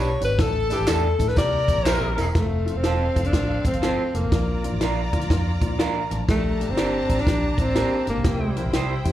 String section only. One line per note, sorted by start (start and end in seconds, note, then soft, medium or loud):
0.00 0.17 B4 medium
0.00 0.18 B5 loud
0.39 1.18 A4 medium
0.39 1.18 A5 loud
1.36 2.16 A#4 medium
1.36 2.16 A#5 loud
2.35 4.28 C4 medium
2.35 4.28 A4 medium
2.35 4.28 F5 medium
4.31 6.24 F4 medium
4.31 6.24 D5 medium
4.31 6.24 A#5 medium
6.29 8.21 D4 medium
6.29 8.21 A5 medium
6.29 8.21 A#5 medium
8.25 9.12 E4 medium
8.25 9.12 C5 medium
8.25 9.12 G5 medium